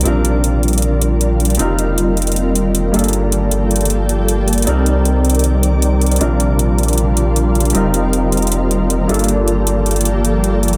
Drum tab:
HH |x---x---x---xxxxx---x---x---xxxx|x---x---x---xxxxx---x---x---xxxx|x---x---x---xxxxx---x---x---xxxx|x---x---x---xxxxx---x---x---xxxx|

HH |x---x---x---xxxxx---x---x---xxxx|x---x---x---xxxxx---x---x---xxxx|x---x---x---xxxxx---x---x---xxx-|